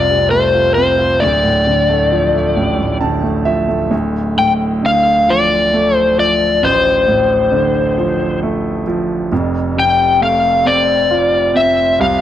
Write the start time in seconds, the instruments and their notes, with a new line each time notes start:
Already playing: grand piano F1 C2 F2 C3 A3 C4 F4, electric slide guitar D5
0.11 grand piano C3
0.31 grand piano A3, electric slide guitar C5
0.54 grand piano F4
0.75 grand piano C4, electric slide guitar C5
0.99 grand piano F4
1.20 grand piano D1 D2, electric slide guitar D5
1.44 grand piano A2
1.67 grand piano D3
1.89 grand piano A3
2.12 grand piano F3
2.34 grand piano A3
2.56 grand piano A1 A2
2.79 grand piano A2
3.01 grand piano D3 A5
3.22 grand piano A3
3.45 grand piano F3 E5
3.68 grand piano A3
3.91 grand piano D1 D2
4.37 grand piano A2, electric slide guitar G5
4.83 grand piano D3, electric slide guitar F5
5.28 grand piano F3, electric slide guitar D5
5.74 grand piano A3
5.95 electric slide guitar C5
6.18 grand piano F3, electric slide guitar D5
6.63 grand piano A1, electric slide guitar C5
7.08 grand piano A2
7.52 grand piano D3
7.98 grand piano F3
8.43 grand piano A3
8.87 grand piano F3
9.32 grand piano F1 F2
9.76 grand piano C3, electric slide guitar G5
10.21 grand piano A3, electric slide guitar F5
10.65 grand piano C4, electric slide guitar D5
11.11 grand piano F4
11.54 grand piano C4, electric slide guitar E5
12.00 grand piano C2, electric slide guitar F5